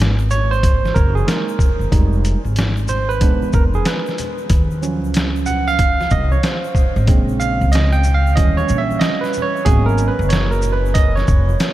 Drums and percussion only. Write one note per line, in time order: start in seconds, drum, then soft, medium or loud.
0.02 snare loud
0.19 shaker medium
0.31 low conga medium
0.31 shaker medium
0.31 shaker soft
0.53 shaker soft
0.63 kick loud
0.63 closed hi-hat medium
0.63 shaker medium
0.85 snare soft
0.85 high conga medium
0.85 shaker soft
0.96 kick medium
0.96 low conga medium
0.96 shaker soft
1.17 high conga medium
1.17 shaker soft
1.28 snare loud
1.28 closed hi-hat medium
1.28 shaker medium
1.48 shaker medium
1.59 kick medium
1.59 low conga medium
1.59 shaker soft
1.63 shaker soft
1.81 shaker soft
1.92 kick loud
1.92 closed hi-hat medium
1.92 shaker medium
2.13 shaker soft
2.24 closed hi-hat medium
2.24 shaker soft
2.24 shaker medium
2.46 shaker soft
2.56 snare loud
2.56 closed hi-hat medium
2.56 high conga soft
2.56 shaker medium
2.77 shaker medium
2.88 low conga medium
2.88 shaker medium
2.88 shaker soft
3.10 shaker medium
3.21 kick medium
3.21 closed hi-hat medium
3.21 shaker medium
3.42 high conga medium
3.42 shaker soft
3.53 kick medium
3.53 low conga medium
3.53 shaker soft
3.74 high conga medium
3.74 shaker soft
3.85 snare loud
3.85 closed hi-hat medium
3.85 shaker medium
4.06 snare soft
4.06 shaker medium
4.18 closed hi-hat medium
4.18 low conga medium
4.18 shaker soft
4.38 shaker soft
4.50 kick loud
4.50 closed hi-hat medium
4.50 shaker medium
4.71 shaker soft
4.83 shaker medium
4.83 shaker soft
5.04 shaker soft
5.14 snare loud
5.14 closed hi-hat medium
5.14 high conga soft
5.14 shaker medium
5.36 shaker medium
5.46 low conga medium
5.46 shaker medium
5.46 shaker soft
5.68 shaker medium
5.79 kick medium
5.79 closed hi-hat medium
5.79 shaker medium
6.00 snare soft
6.00 high conga medium
6.00 shaker soft
6.11 kick medium
6.11 low conga medium
6.11 shaker soft
6.32 high conga medium
6.32 shaker soft
6.43 snare loud
6.43 closed hi-hat medium
6.43 shaker medium
6.64 shaker medium
6.75 kick medium
6.75 low conga medium
6.75 shaker medium
6.78 shaker soft
6.96 shaker soft
7.07 kick loud
7.07 closed hi-hat medium
7.07 shaker medium
7.28 shaker soft
7.40 shaker soft
7.40 shaker medium
7.61 shaker soft
7.72 snare loud
7.72 closed hi-hat medium
7.72 high conga soft
7.72 shaker medium
7.92 shaker medium
8.04 low conga medium
8.04 shaker medium
8.06 shaker soft
8.27 shaker medium
8.37 kick medium
8.37 closed hi-hat medium
8.37 shaker medium
8.58 high conga medium
8.58 shaker soft
8.69 low conga medium
8.69 shaker soft
8.70 shaker soft
8.91 high conga medium
8.91 shaker soft
9.01 snare loud
9.01 closed hi-hat medium
9.01 shaker medium
9.24 snare soft
9.24 shaker medium
9.33 low conga medium
9.33 shaker medium
9.37 shaker soft
9.56 shaker soft
9.66 kick loud
9.66 closed hi-hat medium
9.66 shaker medium
9.89 shaker soft
9.98 shaker medium
10.01 shaker soft
10.21 shaker soft
10.30 snare loud
10.30 closed hi-hat medium
10.30 high conga soft
10.30 shaker medium
10.52 shaker medium
10.62 low conga medium
10.62 shaker medium
10.64 shaker soft
10.86 shaker soft
10.95 kick medium
10.95 closed hi-hat medium
10.95 shaker medium
11.17 snare soft
11.17 high conga medium
11.17 shaker soft
11.28 kick medium
11.28 low conga medium
11.28 shaker soft
11.28 shaker medium
11.49 high conga medium
11.49 shaker soft
11.60 snare loud
11.60 closed hi-hat medium
11.60 shaker medium